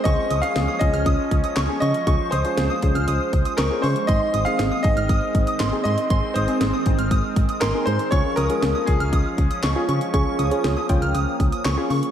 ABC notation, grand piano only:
X:1
M:4/4
L:1/16
Q:1/4=119
K:Dblyd
V:1 name="Grand piano"
e3 f3 e8 e2- | e2 c8 z2 B2 c2 | e3 f3 e8 e2- | e2 c8 z2 B2 c2 |
d2 B4 A8- A2- | A12 z4 |]